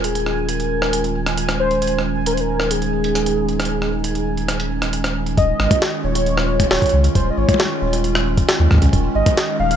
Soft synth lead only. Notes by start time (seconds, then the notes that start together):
0.04 G#4
0.48 A#4
1.60 C5
2.26 A#4
2.33 C5
2.40 A#4
2.71 G#4
5.38 D#5
6.04 C#5
6.71 C#5
7.15 C5
7.31 D#5
7.38 C#5
9.15 D#5
9.60 F5